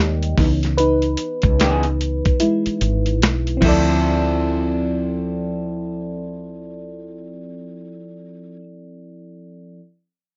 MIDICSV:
0, 0, Header, 1, 6, 480
1, 0, Start_track
1, 0, Tempo, 810811
1, 462, Time_signature, 4, 2, 24, 8
1, 6135, End_track
2, 0, Start_track
2, 0, Title_t, "FM electric piano"
2, 0, Program_c, 0, 5
2, 0, Control_c, 0, 64, 127
2, 0, Note_on_c, 0, 55, 55
2, 0, Note_on_c, 0, 56, 49
2, 0, Note_on_c, 0, 58, 68
2, 0, Note_on_c, 0, 63, 61
2, 0, Note_on_c, 0, 67, 87
2, 197, Note_off_c, 0, 67, 0
2, 199, Note_off_c, 0, 55, 0
2, 200, Note_off_c, 0, 56, 0
2, 202, Note_off_c, 0, 63, 0
2, 204, Note_off_c, 0, 58, 0
2, 225, Note_on_c, 0, 52, 57
2, 228, Note_on_c, 0, 59, 54
2, 229, Control_c, 0, 64, 0
2, 231, Note_on_c, 0, 63, 66
2, 343, Control_c, 0, 64, 127
2, 459, Note_on_c, 0, 71, 106
2, 465, Note_off_c, 0, 63, 0
2, 472, Note_on_c, 0, 63, 86
2, 919, Note_off_c, 0, 52, 0
2, 921, Note_off_c, 0, 59, 0
2, 1397, Note_off_c, 0, 71, 0
2, 1403, Note_off_c, 0, 63, 0
2, 1421, Note_on_c, 0, 64, 81
2, 1435, Note_on_c, 0, 56, 68
2, 2114, Note_on_c, 0, 60, 76
2, 2118, Note_off_c, 0, 64, 0
2, 2125, Note_off_c, 0, 56, 0
2, 2133, Note_on_c, 0, 64, 68
2, 2148, Note_on_c, 0, 53, 75
2, 2150, Control_c, 0, 64, 0
2, 2165, Note_on_c, 0, 69, 72
2, 2181, Note_on_c, 0, 74, 87
2, 2237, Control_c, 0, 64, 127
2, 2388, Control_c, 0, 64, 0
2, 2497, Control_c, 0, 64, 127
2, 5034, Note_off_c, 0, 60, 0
2, 5053, Note_off_c, 0, 64, 0
2, 5068, Note_off_c, 0, 53, 0
2, 5085, Note_off_c, 0, 69, 0
2, 5101, Note_off_c, 0, 74, 0
2, 5788, Control_c, 0, 64, 0
2, 6135, End_track
3, 0, Start_track
3, 0, Title_t, "Clean electric guitar"
3, 0, Program_c, 1, 27
3, 944, Note_on_c, 1, 52, 72
3, 949, Note_on_c, 1, 59, 72
3, 951, Note_on_c, 1, 63, 75
3, 955, Note_on_c, 1, 68, 82
3, 1088, Note_off_c, 1, 52, 0
3, 1091, Note_off_c, 1, 59, 0
3, 1092, Note_off_c, 1, 63, 0
3, 1094, Note_off_c, 1, 68, 0
3, 2136, Note_on_c, 1, 53, 79
3, 2146, Note_on_c, 1, 60, 81
3, 2156, Note_on_c, 1, 64, 98
3, 2167, Note_on_c, 1, 69, 92
3, 5080, Note_off_c, 1, 53, 0
3, 5090, Note_off_c, 1, 60, 0
3, 5099, Note_off_c, 1, 64, 0
3, 5111, Note_off_c, 1, 69, 0
3, 6135, End_track
4, 0, Start_track
4, 0, Title_t, "Fretless electric bass"
4, 0, Program_c, 2, 35
4, 0, Note_on_c, 2, 39, 96
4, 205, Note_off_c, 2, 39, 0
4, 226, Note_on_c, 2, 37, 96
4, 680, Note_off_c, 2, 37, 0
4, 852, Note_on_c, 2, 37, 91
4, 1307, Note_off_c, 2, 37, 0
4, 1664, Note_on_c, 2, 32, 83
4, 1908, Note_off_c, 2, 32, 0
4, 1908, Note_on_c, 2, 35, 97
4, 2125, Note_off_c, 2, 35, 0
4, 2147, Note_on_c, 2, 38, 82
4, 5067, Note_off_c, 2, 38, 0
4, 6135, End_track
5, 0, Start_track
5, 0, Title_t, "Muted fretless electric bass strokes"
5, 1576, Note_on_c, 9, 29, 47
5, 1635, Note_off_c, 9, 29, 0
5, 6135, End_track
6, 0, Start_track
6, 0, Title_t, "Drums"
6, 134, Note_on_c, 9, 42, 48
6, 193, Note_off_c, 9, 42, 0
6, 222, Note_on_c, 9, 36, 106
6, 224, Note_on_c, 9, 46, 49
6, 236, Note_on_c, 9, 38, 36
6, 282, Note_off_c, 9, 36, 0
6, 283, Note_off_c, 9, 46, 0
6, 295, Note_off_c, 9, 38, 0
6, 373, Note_on_c, 9, 42, 50
6, 383, Note_on_c, 9, 38, 35
6, 432, Note_off_c, 9, 42, 0
6, 442, Note_off_c, 9, 38, 0
6, 463, Note_on_c, 9, 42, 78
6, 522, Note_off_c, 9, 42, 0
6, 604, Note_on_c, 9, 42, 45
6, 663, Note_off_c, 9, 42, 0
6, 694, Note_on_c, 9, 42, 77
6, 754, Note_off_c, 9, 42, 0
6, 840, Note_on_c, 9, 42, 47
6, 849, Note_on_c, 9, 36, 99
6, 899, Note_off_c, 9, 42, 0
6, 908, Note_off_c, 9, 36, 0
6, 945, Note_on_c, 9, 42, 71
6, 953, Note_on_c, 9, 38, 105
6, 1004, Note_off_c, 9, 42, 0
6, 1012, Note_off_c, 9, 38, 0
6, 1084, Note_on_c, 9, 42, 44
6, 1144, Note_off_c, 9, 42, 0
6, 1189, Note_on_c, 9, 42, 61
6, 1248, Note_off_c, 9, 42, 0
6, 1333, Note_on_c, 9, 42, 44
6, 1336, Note_on_c, 9, 36, 87
6, 1393, Note_off_c, 9, 42, 0
6, 1395, Note_off_c, 9, 36, 0
6, 1420, Note_on_c, 9, 42, 86
6, 1479, Note_off_c, 9, 42, 0
6, 1574, Note_on_c, 9, 42, 50
6, 1633, Note_off_c, 9, 42, 0
6, 1664, Note_on_c, 9, 42, 65
6, 1723, Note_off_c, 9, 42, 0
6, 1811, Note_on_c, 9, 42, 46
6, 1870, Note_off_c, 9, 42, 0
6, 1908, Note_on_c, 9, 42, 71
6, 1914, Note_on_c, 9, 38, 115
6, 1967, Note_off_c, 9, 42, 0
6, 1974, Note_off_c, 9, 38, 0
6, 2054, Note_on_c, 9, 42, 49
6, 2113, Note_off_c, 9, 42, 0
6, 2142, Note_on_c, 9, 36, 99
6, 2143, Note_on_c, 9, 49, 87
6, 2201, Note_off_c, 9, 36, 0
6, 2202, Note_off_c, 9, 49, 0
6, 6135, End_track
0, 0, End_of_file